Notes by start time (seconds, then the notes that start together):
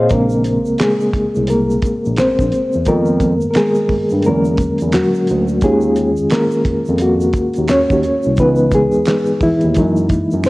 Already playing: A#2 A#3 C4 G#4 C5 C#5 D#5 F5
0.09 A#1 C#3 G#3 A#3 C4 A#4, kick, closed hi-hat, shaker
0.30 shaker
0.44 closed hi-hat, shaker
0.65 C2, shaker
0.78 G#3 G#4, finger snap, snare, clap, closed hi-hat, shaker
1.00 shaker
1.13 C2, kick, closed hi-hat
1.35 C2, shaker
1.47 A#4, closed hi-hat, shaker
1.51 A#3
1.70 shaker
1.82 kick, closed hi-hat, shaker
2.05 A#1, shaker
2.16 A#1 C5, finger snap, snare, clap, closed hi-hat, shaker
2.21 C4
2.39 A#1, kick, shaker
2.52 closed hi-hat, shaker
2.72 E2, shaker
2.85 F2 D#3 G#3 B3 A#4, kick, closed hi-hat, shaker
2.90 A#3
3.06 shaker
3.20 kick, closed hi-hat, shaker
3.41 G2, shaker
3.51 A#4, closed hi-hat
3.55 G#3 G#4, finger snap, snare, clap, shaker
3.75 shaker
3.89 G2, kick, open hi-hat
4.09 G2, shaker
4.22 D3, closed hi-hat, shaker
4.26 E2 F#3 G#3 A#3 C#4 A#4
4.45 shaker
4.57 E2, kick, closed hi-hat, shaker
4.78 E2, closed hi-hat, shaker
4.92 F#3 F#4, finger snap, snare, clap, closed hi-hat, shaker
5.14 shaker
5.27 D2, closed hi-hat, shaker
5.48 shaker
5.61 D#2 D#3 C#4 F4 G#4, kick, closed hi-hat, shaker
5.65 G#3
5.81 shaker
5.96 closed hi-hat, shaker
6.17 F2, shaker
6.30 A#4, finger snap, snare, clap, closed hi-hat, shaker
6.34 A#3
6.51 shaker
6.65 F2, kick, closed hi-hat
6.86 F2, shaker
6.98 F#4, closed hi-hat, shaker
7.03 A#3
7.21 shaker
7.33 kick, closed hi-hat, shaker
7.54 D#2, closed hi-hat, shaker
7.68 D#2 C#4 C#5, finger snap, snare, clap, closed hi-hat, shaker
7.90 D#2, kick, shaker
8.03 closed hi-hat, shaker
8.23 C2, shaker
8.37 C#2 E3 B3 B4, kick, closed hi-hat, shaker
8.41 D#4
8.56 shaker
8.71 G#4, kick, closed hi-hat, shaker
8.76 G#3
8.92 D#2, shaker
9.05 finger snap, snare, clap, closed hi-hat, shaker
9.26 shaker
9.41 D#2 E3 E4, kick, open hi-hat, shaker
9.61 D#2, closed hi-hat, shaker
9.74 F#2 E3 G#3 A#3 D#4, kick, closed hi-hat, shaker
9.96 shaker
10.09 F#2, kick, closed hi-hat, shaker
10.31 F#2, shaker
10.44 C5, finger snap, snare, shaker